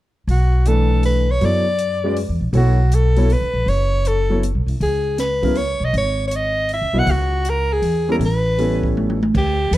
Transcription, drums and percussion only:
0, 0, Header, 1, 2, 480
1, 0, Start_track
1, 0, Tempo, 377358
1, 361, Time_signature, 3, 2, 24, 8
1, 12434, End_track
2, 0, Start_track
2, 0, Title_t, "Drums"
2, 365, Note_on_c, 9, 46, 35
2, 492, Note_off_c, 9, 46, 0
2, 835, Note_on_c, 9, 42, 46
2, 962, Note_off_c, 9, 42, 0
2, 1312, Note_on_c, 9, 46, 41
2, 1439, Note_off_c, 9, 46, 0
2, 1797, Note_on_c, 9, 46, 36
2, 1924, Note_off_c, 9, 46, 0
2, 2272, Note_on_c, 9, 42, 49
2, 2400, Note_off_c, 9, 42, 0
2, 2755, Note_on_c, 9, 46, 44
2, 2882, Note_off_c, 9, 46, 0
2, 3226, Note_on_c, 9, 46, 38
2, 3353, Note_off_c, 9, 46, 0
2, 3711, Note_on_c, 9, 42, 49
2, 3838, Note_off_c, 9, 42, 0
2, 4026, Note_on_c, 9, 46, 34
2, 4153, Note_off_c, 9, 46, 0
2, 4195, Note_on_c, 9, 46, 41
2, 4323, Note_off_c, 9, 46, 0
2, 4683, Note_on_c, 9, 46, 36
2, 4810, Note_off_c, 9, 46, 0
2, 5153, Note_on_c, 9, 42, 46
2, 5280, Note_off_c, 9, 42, 0
2, 5639, Note_on_c, 9, 42, 51
2, 5766, Note_off_c, 9, 42, 0
2, 5957, Note_on_c, 9, 46, 32
2, 6084, Note_off_c, 9, 46, 0
2, 6120, Note_on_c, 9, 46, 39
2, 6247, Note_off_c, 9, 46, 0
2, 6594, Note_on_c, 9, 42, 49
2, 6596, Note_on_c, 9, 38, 36
2, 6721, Note_off_c, 9, 42, 0
2, 6724, Note_off_c, 9, 38, 0
2, 6908, Note_on_c, 9, 36, 49
2, 6909, Note_on_c, 9, 46, 35
2, 7035, Note_off_c, 9, 36, 0
2, 7036, Note_off_c, 9, 46, 0
2, 7065, Note_on_c, 9, 46, 43
2, 7193, Note_off_c, 9, 46, 0
2, 7553, Note_on_c, 9, 46, 37
2, 7680, Note_off_c, 9, 46, 0
2, 8031, Note_on_c, 9, 42, 52
2, 8158, Note_off_c, 9, 42, 0
2, 8508, Note_on_c, 9, 46, 38
2, 8635, Note_off_c, 9, 46, 0
2, 8993, Note_on_c, 9, 46, 39
2, 9120, Note_off_c, 9, 46, 0
2, 9475, Note_on_c, 9, 42, 53
2, 9602, Note_off_c, 9, 42, 0
2, 9954, Note_on_c, 9, 46, 45
2, 10081, Note_off_c, 9, 46, 0
2, 10440, Note_on_c, 9, 46, 39
2, 10567, Note_off_c, 9, 46, 0
2, 10922, Note_on_c, 9, 46, 40
2, 11049, Note_off_c, 9, 46, 0
2, 11238, Note_on_c, 9, 36, 54
2, 11365, Note_off_c, 9, 36, 0
2, 11411, Note_on_c, 9, 48, 42
2, 11539, Note_off_c, 9, 48, 0
2, 11573, Note_on_c, 9, 48, 49
2, 11700, Note_off_c, 9, 48, 0
2, 11737, Note_on_c, 9, 48, 62
2, 11864, Note_off_c, 9, 48, 0
2, 11890, Note_on_c, 9, 36, 64
2, 11890, Note_on_c, 9, 49, 67
2, 12017, Note_off_c, 9, 36, 0
2, 12018, Note_off_c, 9, 49, 0
2, 12374, Note_on_c, 9, 44, 54
2, 12374, Note_on_c, 9, 51, 67
2, 12434, Note_off_c, 9, 44, 0
2, 12434, Note_off_c, 9, 51, 0
2, 12434, End_track
0, 0, End_of_file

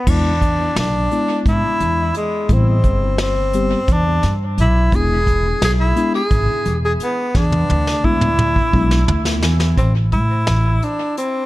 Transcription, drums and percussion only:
0, 0, Header, 1, 2, 480
1, 0, Start_track
1, 0, Tempo, 693642
1, 53, Time_signature, 7, 3, 24, 8
1, 7929, End_track
2, 0, Start_track
2, 0, Title_t, "Drums"
2, 47, Note_on_c, 9, 49, 84
2, 48, Note_on_c, 9, 36, 101
2, 117, Note_off_c, 9, 49, 0
2, 118, Note_off_c, 9, 36, 0
2, 288, Note_on_c, 9, 36, 63
2, 288, Note_on_c, 9, 42, 53
2, 357, Note_off_c, 9, 36, 0
2, 357, Note_off_c, 9, 42, 0
2, 529, Note_on_c, 9, 38, 100
2, 529, Note_on_c, 9, 42, 73
2, 598, Note_off_c, 9, 38, 0
2, 598, Note_off_c, 9, 42, 0
2, 770, Note_on_c, 9, 42, 50
2, 839, Note_off_c, 9, 42, 0
2, 1008, Note_on_c, 9, 36, 88
2, 1011, Note_on_c, 9, 42, 74
2, 1077, Note_off_c, 9, 36, 0
2, 1080, Note_off_c, 9, 42, 0
2, 1246, Note_on_c, 9, 42, 53
2, 1315, Note_off_c, 9, 42, 0
2, 1483, Note_on_c, 9, 42, 53
2, 1552, Note_off_c, 9, 42, 0
2, 1722, Note_on_c, 9, 42, 71
2, 1725, Note_on_c, 9, 36, 96
2, 1791, Note_off_c, 9, 42, 0
2, 1794, Note_off_c, 9, 36, 0
2, 1962, Note_on_c, 9, 42, 56
2, 1964, Note_on_c, 9, 36, 65
2, 2031, Note_off_c, 9, 42, 0
2, 2034, Note_off_c, 9, 36, 0
2, 2203, Note_on_c, 9, 38, 105
2, 2203, Note_on_c, 9, 42, 75
2, 2272, Note_off_c, 9, 38, 0
2, 2272, Note_off_c, 9, 42, 0
2, 2445, Note_on_c, 9, 42, 58
2, 2514, Note_off_c, 9, 42, 0
2, 2685, Note_on_c, 9, 42, 73
2, 2686, Note_on_c, 9, 36, 99
2, 2754, Note_off_c, 9, 42, 0
2, 2755, Note_off_c, 9, 36, 0
2, 2926, Note_on_c, 9, 38, 28
2, 2926, Note_on_c, 9, 42, 56
2, 2995, Note_off_c, 9, 38, 0
2, 2995, Note_off_c, 9, 42, 0
2, 3168, Note_on_c, 9, 42, 59
2, 3237, Note_off_c, 9, 42, 0
2, 3407, Note_on_c, 9, 36, 102
2, 3409, Note_on_c, 9, 42, 77
2, 3476, Note_off_c, 9, 36, 0
2, 3478, Note_off_c, 9, 42, 0
2, 3647, Note_on_c, 9, 36, 67
2, 3648, Note_on_c, 9, 42, 63
2, 3717, Note_off_c, 9, 36, 0
2, 3718, Note_off_c, 9, 42, 0
2, 3889, Note_on_c, 9, 38, 102
2, 3889, Note_on_c, 9, 42, 82
2, 3958, Note_off_c, 9, 38, 0
2, 3958, Note_off_c, 9, 42, 0
2, 4127, Note_on_c, 9, 42, 60
2, 4196, Note_off_c, 9, 42, 0
2, 4365, Note_on_c, 9, 36, 95
2, 4365, Note_on_c, 9, 42, 78
2, 4434, Note_off_c, 9, 42, 0
2, 4435, Note_off_c, 9, 36, 0
2, 4604, Note_on_c, 9, 42, 55
2, 4673, Note_off_c, 9, 42, 0
2, 4843, Note_on_c, 9, 42, 60
2, 4913, Note_off_c, 9, 42, 0
2, 5085, Note_on_c, 9, 36, 106
2, 5086, Note_on_c, 9, 38, 57
2, 5154, Note_off_c, 9, 36, 0
2, 5155, Note_off_c, 9, 38, 0
2, 5205, Note_on_c, 9, 48, 49
2, 5275, Note_off_c, 9, 48, 0
2, 5326, Note_on_c, 9, 48, 62
2, 5395, Note_off_c, 9, 48, 0
2, 5448, Note_on_c, 9, 38, 54
2, 5517, Note_off_c, 9, 38, 0
2, 5565, Note_on_c, 9, 36, 66
2, 5634, Note_off_c, 9, 36, 0
2, 5683, Note_on_c, 9, 47, 59
2, 5752, Note_off_c, 9, 47, 0
2, 5803, Note_on_c, 9, 47, 69
2, 5873, Note_off_c, 9, 47, 0
2, 5924, Note_on_c, 9, 36, 64
2, 5993, Note_off_c, 9, 36, 0
2, 6044, Note_on_c, 9, 36, 79
2, 6113, Note_off_c, 9, 36, 0
2, 6165, Note_on_c, 9, 38, 65
2, 6235, Note_off_c, 9, 38, 0
2, 6285, Note_on_c, 9, 43, 78
2, 6354, Note_off_c, 9, 43, 0
2, 6403, Note_on_c, 9, 38, 73
2, 6472, Note_off_c, 9, 38, 0
2, 6522, Note_on_c, 9, 38, 86
2, 6591, Note_off_c, 9, 38, 0
2, 6642, Note_on_c, 9, 38, 82
2, 6711, Note_off_c, 9, 38, 0
2, 6763, Note_on_c, 9, 42, 70
2, 6764, Note_on_c, 9, 36, 94
2, 6833, Note_off_c, 9, 42, 0
2, 6834, Note_off_c, 9, 36, 0
2, 7003, Note_on_c, 9, 42, 53
2, 7005, Note_on_c, 9, 36, 58
2, 7072, Note_off_c, 9, 42, 0
2, 7074, Note_off_c, 9, 36, 0
2, 7245, Note_on_c, 9, 38, 95
2, 7245, Note_on_c, 9, 42, 75
2, 7314, Note_off_c, 9, 38, 0
2, 7314, Note_off_c, 9, 42, 0
2, 7489, Note_on_c, 9, 42, 53
2, 7558, Note_off_c, 9, 42, 0
2, 7731, Note_on_c, 9, 42, 75
2, 7801, Note_off_c, 9, 42, 0
2, 7929, End_track
0, 0, End_of_file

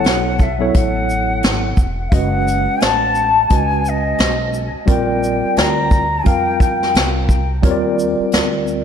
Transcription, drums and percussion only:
0, 0, Header, 1, 2, 480
1, 0, Start_track
1, 0, Tempo, 689655
1, 1474, Time_signature, 4, 2, 24, 8
1, 6156, End_track
2, 0, Start_track
2, 0, Title_t, "Drums"
2, 29, Note_on_c, 9, 42, 63
2, 42, Note_on_c, 9, 38, 92
2, 98, Note_off_c, 9, 42, 0
2, 111, Note_off_c, 9, 38, 0
2, 273, Note_on_c, 9, 82, 38
2, 275, Note_on_c, 9, 36, 91
2, 343, Note_off_c, 9, 82, 0
2, 344, Note_off_c, 9, 36, 0
2, 516, Note_on_c, 9, 42, 73
2, 520, Note_on_c, 9, 36, 97
2, 586, Note_off_c, 9, 42, 0
2, 590, Note_off_c, 9, 36, 0
2, 764, Note_on_c, 9, 82, 55
2, 833, Note_off_c, 9, 82, 0
2, 993, Note_on_c, 9, 42, 70
2, 1004, Note_on_c, 9, 38, 111
2, 1062, Note_off_c, 9, 42, 0
2, 1074, Note_off_c, 9, 38, 0
2, 1233, Note_on_c, 9, 36, 85
2, 1234, Note_on_c, 9, 82, 45
2, 1303, Note_off_c, 9, 36, 0
2, 1304, Note_off_c, 9, 82, 0
2, 1473, Note_on_c, 9, 42, 91
2, 1475, Note_on_c, 9, 36, 110
2, 1543, Note_off_c, 9, 42, 0
2, 1544, Note_off_c, 9, 36, 0
2, 1725, Note_on_c, 9, 42, 59
2, 1725, Note_on_c, 9, 82, 53
2, 1794, Note_off_c, 9, 42, 0
2, 1794, Note_off_c, 9, 82, 0
2, 1950, Note_on_c, 9, 42, 68
2, 1963, Note_on_c, 9, 38, 106
2, 2020, Note_off_c, 9, 42, 0
2, 2033, Note_off_c, 9, 38, 0
2, 2193, Note_on_c, 9, 82, 42
2, 2263, Note_off_c, 9, 82, 0
2, 2435, Note_on_c, 9, 42, 73
2, 2441, Note_on_c, 9, 36, 92
2, 2504, Note_off_c, 9, 42, 0
2, 2510, Note_off_c, 9, 36, 0
2, 2682, Note_on_c, 9, 82, 56
2, 2752, Note_off_c, 9, 82, 0
2, 2912, Note_on_c, 9, 42, 73
2, 2923, Note_on_c, 9, 38, 124
2, 2982, Note_off_c, 9, 42, 0
2, 2993, Note_off_c, 9, 38, 0
2, 3158, Note_on_c, 9, 82, 50
2, 3227, Note_off_c, 9, 82, 0
2, 3392, Note_on_c, 9, 42, 91
2, 3394, Note_on_c, 9, 36, 108
2, 3461, Note_off_c, 9, 42, 0
2, 3464, Note_off_c, 9, 36, 0
2, 3644, Note_on_c, 9, 82, 51
2, 3714, Note_off_c, 9, 82, 0
2, 3872, Note_on_c, 9, 42, 67
2, 3885, Note_on_c, 9, 38, 103
2, 3942, Note_off_c, 9, 42, 0
2, 3955, Note_off_c, 9, 38, 0
2, 4114, Note_on_c, 9, 36, 90
2, 4114, Note_on_c, 9, 82, 39
2, 4184, Note_off_c, 9, 36, 0
2, 4184, Note_off_c, 9, 82, 0
2, 4353, Note_on_c, 9, 42, 77
2, 4359, Note_on_c, 9, 36, 93
2, 4423, Note_off_c, 9, 42, 0
2, 4428, Note_off_c, 9, 36, 0
2, 4595, Note_on_c, 9, 36, 87
2, 4602, Note_on_c, 9, 42, 52
2, 4602, Note_on_c, 9, 82, 52
2, 4665, Note_off_c, 9, 36, 0
2, 4672, Note_off_c, 9, 42, 0
2, 4672, Note_off_c, 9, 82, 0
2, 4751, Note_on_c, 9, 38, 38
2, 4821, Note_off_c, 9, 38, 0
2, 4836, Note_on_c, 9, 42, 77
2, 4847, Note_on_c, 9, 38, 115
2, 4905, Note_off_c, 9, 42, 0
2, 4917, Note_off_c, 9, 38, 0
2, 5072, Note_on_c, 9, 36, 91
2, 5078, Note_on_c, 9, 82, 51
2, 5142, Note_off_c, 9, 36, 0
2, 5147, Note_off_c, 9, 82, 0
2, 5311, Note_on_c, 9, 42, 101
2, 5313, Note_on_c, 9, 36, 105
2, 5381, Note_off_c, 9, 42, 0
2, 5383, Note_off_c, 9, 36, 0
2, 5563, Note_on_c, 9, 82, 61
2, 5633, Note_off_c, 9, 82, 0
2, 5789, Note_on_c, 9, 42, 73
2, 5802, Note_on_c, 9, 38, 97
2, 5858, Note_off_c, 9, 42, 0
2, 5872, Note_off_c, 9, 38, 0
2, 6038, Note_on_c, 9, 82, 42
2, 6107, Note_off_c, 9, 82, 0
2, 6156, End_track
0, 0, End_of_file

